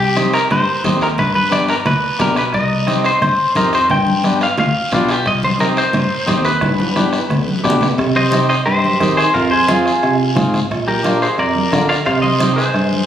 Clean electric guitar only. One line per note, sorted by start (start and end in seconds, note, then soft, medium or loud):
0.00 0.31 G4 medium
0.34 0.51 A#4 medium
0.52 0.98 C5 medium
1.03 1.08 A#4 medium
1.19 1.34 B4 medium
1.35 1.52 B4 medium
1.52 1.68 D5 medium
1.70 1.75 A#4 medium
1.87 2.18 B4 medium
2.21 2.36 A#4 medium
2.38 2.43 B4 medium
2.54 3.02 D#5 medium
3.06 3.21 C5 medium
3.22 3.57 C5 medium
3.57 3.72 A#4 medium
3.75 3.90 C5 medium
3.91 4.38 G5 loud
4.43 4.58 F5 medium
4.60 4.94 F5 medium
4.94 5.11 F4 medium
5.11 5.27 G4 medium
5.27 5.32 D#5 loud
5.44 5.49 C5 medium
5.60 5.65 A#4 medium
5.78 6.45 C5 loud
6.45 7.60 B4 medium
8.16 8.47 C5 medium
8.16 8.47 D#5 medium
8.49 8.55 C5 medium
8.49 8.54 D#5 loud
8.66 9.13 G4 medium
8.66 9.16 C5 medium
9.17 9.33 G#4 medium
9.17 9.35 C5 medium
9.34 9.50 F4 medium
9.34 9.51 A#4 medium
9.51 9.67 G#4 medium
9.51 9.68 C5 medium
9.68 10.16 F4 medium
9.68 10.15 G#4 medium
10.88 11.19 G4 medium
10.88 11.22 A#4 medium
11.22 11.38 G#4 medium
11.22 11.39 C5 medium
11.39 11.86 A#4 medium
11.39 11.88 D5 medium
11.89 11.94 D5 medium
11.89 11.94 F5 loud
12.06 12.21 C5 medium
12.06 12.22 F5 loud
12.22 12.54 C5 medium
12.22 12.57 D#5 loud
12.56 13.06 G#4 medium
12.56 13.06 C5 medium